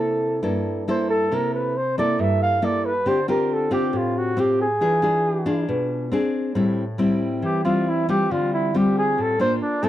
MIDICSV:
0, 0, Header, 1, 3, 480
1, 0, Start_track
1, 0, Tempo, 436681
1, 1436, Time_signature, 4, 2, 24, 8
1, 10869, End_track
2, 0, Start_track
2, 0, Title_t, "Flugelhorn"
2, 0, Program_c, 0, 56
2, 0, Note_on_c, 0, 69, 76
2, 482, Note_off_c, 0, 69, 0
2, 989, Note_on_c, 0, 72, 81
2, 1197, Note_off_c, 0, 72, 0
2, 1213, Note_on_c, 0, 69, 92
2, 1474, Note_on_c, 0, 70, 80
2, 1490, Note_off_c, 0, 69, 0
2, 1687, Note_off_c, 0, 70, 0
2, 1693, Note_on_c, 0, 71, 74
2, 1943, Note_on_c, 0, 72, 82
2, 1960, Note_off_c, 0, 71, 0
2, 2169, Note_off_c, 0, 72, 0
2, 2182, Note_on_c, 0, 74, 96
2, 2422, Note_on_c, 0, 76, 88
2, 2438, Note_off_c, 0, 74, 0
2, 2649, Note_off_c, 0, 76, 0
2, 2660, Note_on_c, 0, 77, 105
2, 2907, Note_on_c, 0, 74, 92
2, 2923, Note_off_c, 0, 77, 0
2, 3136, Note_on_c, 0, 71, 84
2, 3153, Note_off_c, 0, 74, 0
2, 3388, Note_on_c, 0, 72, 98
2, 3405, Note_off_c, 0, 71, 0
2, 3612, Note_off_c, 0, 72, 0
2, 3623, Note_on_c, 0, 70, 84
2, 3881, Note_on_c, 0, 69, 75
2, 3897, Note_off_c, 0, 70, 0
2, 4091, Note_off_c, 0, 69, 0
2, 4098, Note_on_c, 0, 67, 87
2, 4361, Note_on_c, 0, 65, 80
2, 4377, Note_off_c, 0, 67, 0
2, 4593, Note_on_c, 0, 66, 79
2, 4610, Note_off_c, 0, 65, 0
2, 4842, Note_on_c, 0, 67, 75
2, 4859, Note_off_c, 0, 66, 0
2, 5059, Note_off_c, 0, 67, 0
2, 5069, Note_on_c, 0, 68, 89
2, 6209, Note_off_c, 0, 68, 0
2, 8184, Note_on_c, 0, 67, 88
2, 8394, Note_off_c, 0, 67, 0
2, 8403, Note_on_c, 0, 65, 85
2, 8665, Note_on_c, 0, 64, 81
2, 8682, Note_off_c, 0, 65, 0
2, 8891, Note_off_c, 0, 64, 0
2, 8902, Note_on_c, 0, 67, 95
2, 9139, Note_on_c, 0, 65, 90
2, 9155, Note_off_c, 0, 67, 0
2, 9368, Note_off_c, 0, 65, 0
2, 9384, Note_on_c, 0, 64, 86
2, 9636, Note_on_c, 0, 67, 76
2, 9653, Note_off_c, 0, 64, 0
2, 9857, Note_off_c, 0, 67, 0
2, 9871, Note_on_c, 0, 68, 99
2, 10127, Note_on_c, 0, 69, 90
2, 10144, Note_off_c, 0, 68, 0
2, 10336, Note_off_c, 0, 69, 0
2, 10343, Note_on_c, 0, 72, 105
2, 10479, Note_off_c, 0, 72, 0
2, 10575, Note_on_c, 0, 62, 101
2, 10817, Note_on_c, 0, 69, 121
2, 10833, Note_off_c, 0, 62, 0
2, 10869, Note_off_c, 0, 69, 0
2, 10869, End_track
3, 0, Start_track
3, 0, Title_t, "Nylon-string guitar"
3, 0, Program_c, 1, 24
3, 0, Note_on_c, 1, 48, 66
3, 0, Note_on_c, 1, 58, 62
3, 0, Note_on_c, 1, 64, 70
3, 0, Note_on_c, 1, 69, 73
3, 442, Note_off_c, 1, 58, 0
3, 445, Note_off_c, 1, 64, 0
3, 445, Note_off_c, 1, 69, 0
3, 455, Note_off_c, 1, 48, 0
3, 469, Note_on_c, 1, 43, 69
3, 469, Note_on_c, 1, 64, 50
3, 474, Note_on_c, 1, 58, 56
3, 479, Note_on_c, 1, 69, 57
3, 913, Note_off_c, 1, 64, 0
3, 917, Note_off_c, 1, 58, 0
3, 918, Note_off_c, 1, 69, 0
3, 964, Note_on_c, 1, 58, 63
3, 971, Note_on_c, 1, 64, 70
3, 978, Note_on_c, 1, 69, 68
3, 1401, Note_off_c, 1, 58, 0
3, 1405, Note_off_c, 1, 64, 0
3, 1407, Note_off_c, 1, 69, 0
3, 1409, Note_off_c, 1, 43, 0
3, 1445, Note_on_c, 1, 48, 63
3, 1450, Note_on_c, 1, 64, 49
3, 1451, Note_on_c, 1, 58, 44
3, 1455, Note_on_c, 1, 69, 66
3, 1919, Note_off_c, 1, 64, 0
3, 1920, Note_off_c, 1, 58, 0
3, 1922, Note_off_c, 1, 69, 0
3, 2175, Note_on_c, 1, 58, 65
3, 2182, Note_on_c, 1, 64, 64
3, 2188, Note_on_c, 1, 69, 75
3, 2376, Note_off_c, 1, 48, 0
3, 2405, Note_on_c, 1, 43, 63
3, 2847, Note_off_c, 1, 58, 0
3, 2851, Note_off_c, 1, 64, 0
3, 2853, Note_off_c, 1, 69, 0
3, 2880, Note_on_c, 1, 58, 63
3, 2886, Note_on_c, 1, 64, 60
3, 2887, Note_on_c, 1, 69, 66
3, 3201, Note_off_c, 1, 58, 0
3, 3202, Note_off_c, 1, 64, 0
3, 3204, Note_off_c, 1, 69, 0
3, 3337, Note_off_c, 1, 43, 0
3, 3360, Note_on_c, 1, 50, 60
3, 3362, Note_on_c, 1, 60, 52
3, 3363, Note_on_c, 1, 65, 45
3, 3372, Note_on_c, 1, 67, 60
3, 3499, Note_off_c, 1, 60, 0
3, 3501, Note_off_c, 1, 65, 0
3, 3503, Note_off_c, 1, 67, 0
3, 3605, Note_on_c, 1, 60, 65
3, 3610, Note_on_c, 1, 65, 68
3, 3618, Note_on_c, 1, 67, 60
3, 4042, Note_off_c, 1, 60, 0
3, 4045, Note_off_c, 1, 65, 0
3, 4048, Note_off_c, 1, 67, 0
3, 4076, Note_on_c, 1, 60, 65
3, 4083, Note_on_c, 1, 65, 66
3, 4086, Note_on_c, 1, 67, 69
3, 4295, Note_off_c, 1, 50, 0
3, 4318, Note_on_c, 1, 45, 64
3, 4758, Note_off_c, 1, 60, 0
3, 4760, Note_off_c, 1, 65, 0
3, 4763, Note_off_c, 1, 67, 0
3, 4800, Note_on_c, 1, 60, 69
3, 4812, Note_on_c, 1, 65, 66
3, 4820, Note_on_c, 1, 67, 71
3, 5121, Note_off_c, 1, 60, 0
3, 5127, Note_off_c, 1, 65, 0
3, 5131, Note_off_c, 1, 67, 0
3, 5254, Note_off_c, 1, 45, 0
3, 5285, Note_on_c, 1, 62, 52
3, 5289, Note_on_c, 1, 52, 60
3, 5293, Note_on_c, 1, 65, 56
3, 5296, Note_on_c, 1, 68, 64
3, 5482, Note_off_c, 1, 62, 0
3, 5485, Note_off_c, 1, 65, 0
3, 5488, Note_off_c, 1, 68, 0
3, 5520, Note_on_c, 1, 62, 63
3, 5529, Note_on_c, 1, 65, 60
3, 5536, Note_on_c, 1, 68, 71
3, 5960, Note_off_c, 1, 62, 0
3, 5964, Note_off_c, 1, 65, 0
3, 5968, Note_off_c, 1, 68, 0
3, 5999, Note_on_c, 1, 62, 75
3, 6002, Note_on_c, 1, 65, 73
3, 6008, Note_on_c, 1, 68, 68
3, 6220, Note_off_c, 1, 52, 0
3, 6248, Note_on_c, 1, 47, 69
3, 6680, Note_off_c, 1, 65, 0
3, 6681, Note_off_c, 1, 62, 0
3, 6681, Note_off_c, 1, 68, 0
3, 6698, Note_off_c, 1, 47, 0
3, 6722, Note_on_c, 1, 60, 60
3, 6732, Note_on_c, 1, 62, 65
3, 6737, Note_on_c, 1, 68, 73
3, 7182, Note_off_c, 1, 60, 0
3, 7184, Note_off_c, 1, 62, 0
3, 7184, Note_off_c, 1, 68, 0
3, 7201, Note_on_c, 1, 45, 69
3, 7201, Note_on_c, 1, 55, 52
3, 7204, Note_on_c, 1, 60, 52
3, 7214, Note_on_c, 1, 64, 62
3, 7507, Note_off_c, 1, 55, 0
3, 7509, Note_off_c, 1, 60, 0
3, 7515, Note_off_c, 1, 64, 0
3, 7675, Note_on_c, 1, 55, 55
3, 7683, Note_on_c, 1, 60, 63
3, 7686, Note_on_c, 1, 64, 72
3, 8135, Note_off_c, 1, 45, 0
3, 8160, Note_on_c, 1, 52, 59
3, 8357, Note_off_c, 1, 55, 0
3, 8361, Note_off_c, 1, 60, 0
3, 8362, Note_off_c, 1, 64, 0
3, 8406, Note_on_c, 1, 55, 59
3, 8412, Note_on_c, 1, 60, 56
3, 8421, Note_on_c, 1, 64, 60
3, 8844, Note_off_c, 1, 55, 0
3, 8845, Note_off_c, 1, 60, 0
3, 8851, Note_off_c, 1, 64, 0
3, 8888, Note_on_c, 1, 55, 66
3, 8892, Note_on_c, 1, 60, 66
3, 8896, Note_on_c, 1, 65, 73
3, 9095, Note_off_c, 1, 52, 0
3, 9138, Note_on_c, 1, 50, 65
3, 9564, Note_off_c, 1, 55, 0
3, 9566, Note_off_c, 1, 60, 0
3, 9568, Note_off_c, 1, 65, 0
3, 9612, Note_on_c, 1, 55, 56
3, 9617, Note_on_c, 1, 60, 58
3, 9626, Note_on_c, 1, 65, 59
3, 10064, Note_off_c, 1, 50, 0
3, 10092, Note_on_c, 1, 45, 68
3, 10286, Note_off_c, 1, 55, 0
3, 10289, Note_off_c, 1, 60, 0
3, 10294, Note_off_c, 1, 65, 0
3, 10327, Note_on_c, 1, 58, 66
3, 10332, Note_on_c, 1, 62, 60
3, 10339, Note_on_c, 1, 65, 67
3, 10541, Note_off_c, 1, 45, 0
3, 10764, Note_off_c, 1, 58, 0
3, 10767, Note_off_c, 1, 62, 0
3, 10770, Note_off_c, 1, 65, 0
3, 10803, Note_on_c, 1, 57, 75
3, 10813, Note_on_c, 1, 60, 79
3, 10814, Note_on_c, 1, 64, 80
3, 10869, Note_off_c, 1, 57, 0
3, 10869, Note_off_c, 1, 60, 0
3, 10869, Note_off_c, 1, 64, 0
3, 10869, End_track
0, 0, End_of_file